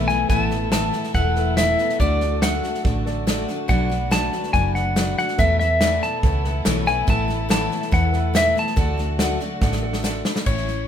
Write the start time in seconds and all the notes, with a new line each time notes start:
Already playing: B1 B2 E3 A3 E4 A4 B4 E5
0.08 E3 A3 B3 E4 G#5, snare
0.29 A1 A2 E3 A3 B3 E4 A4 B4 E5 G#5, kick, snare
0.41 A5
0.49 A3 B3 E4, snare
0.72 A2 E3 A3 B3 E4 A4 B4 E5 A5, snare, hi-hat pedal
0.92 A3 B3 E4, snare
1.04 snare
1.14 E1 E3 A3 B3 E4 A4 B4 E5 F#5, kick, snare
1.36 A4 B4 E5, snare
1.56 A2 E3 A3 B3 E4 A4 B4 E5, snare, hi-hat pedal
1.78 A3 B3 E4, snare
1.89 snare
1.99 D2 D3 F#3 A3 D4 F#4 A4 D5, kick, snare
2.21 A3 D4 F#4, snare
2.41 D3 A3 D4 F#4 A4 E5 F#5, snare, hi-hat pedal
2.45 F#4
2.63 A3 D4 F#4, snare
2.75 snare
2.83 A1 D3 A3 D4 F#4 A4 D5, kick, snare
2.88 F#4
3.05 F#4 A4 D5, snare
3.26 D3 A3 D4 F#4 A4 D5, snare, hi-hat pedal
3.48 A3 D4 F#4, snare
3.68 B1 B2 F#3 A3 B3 D4 F#4 B4 D5 F#5, kick, snare
3.89 A3 D4 F#4, snare
4.11 B2 F#3 A3 D4 F#4 B4 D5 A5, snare, hi-hat pedal
4.33 A3 D4 F#4, snare
4.43 snare
4.53 F#1 F#3 A3 D4 F#4 B4 D5 G#5, kick, snare
4.57 F#4
4.75 F#4 B4 D5 F#5, snare
4.96 B2 F#3 A3 D4 F#4 B4 D5, snare, hi-hat pedal
5.18 A3 D4 F#4 F#5, snare
5.28 snare
5.38 E2 B2 E3 A3 B3 E4 A4 B4 E5, kick, snare
5.59 A3 B3 E4 E5, snare
5.64 E3
5.81 E2 B2 E3 A3 B3 E4 A4 B4 D5, snare, hi-hat pedal
6.02 E3 A3 B3 E4 A5, snare
6.23 C#2 E3 A3 B3 E4 A4 B4 C#5, kick, snare
6.44 A4 B4 F#5, snare
6.65 B1 E2 B2 E3 A3 B3 E4 A4 B4 C#5, snare, hi-hat pedal
6.86 E3 A3 B3 E4 G#5, snare
7.07 A1 A2 E3 A3 B3 E4 A4 B4 E5 A5, kick, snare
7.28 A3 B3 E4, snare
7.49 A2 E3 A3 B3 E4 A4 B4 C#5 A5, snare, hi-hat pedal
7.70 A3 B3 E4, snare
7.82 snare
7.91 E2 E3 A3 B3 E4 A4 B4 C#5 F#5, kick, snare
8.12 A4 B4 E5, snare
8.34 A2 E3 A3 B3 E4 A4 B4 E5, snare, hi-hat pedal
8.55 A3 B3 E4 A5, snare
8.67 snare
8.76 D2 D3 F#3 A3 D4 F#4 A4 D5 F#5, kick, snare
8.97 A3 D4 F#4, snare
9.19 D3 A3 D4 F#4 A4 D5 F#5, snare, hi-hat pedal
9.40 A3 D4 F#4, snare
9.61 A1 D3 A3 D4 F#4 A4 D5 F#5, kick, snare
9.72 snare
9.83 A4 D5 F#5
9.93 snare
10.03 D3 A3 D4 F#4 A4 D5 F#5, snare, hi-hat pedal
10.25 A3 D4 F#4 B5, snare
10.36 snare
10.46 A1 A2 E3 A3 C#4 E4 C#5, kick, snare, crash
10.57 snare
10.68 A3 C#4 E4, snare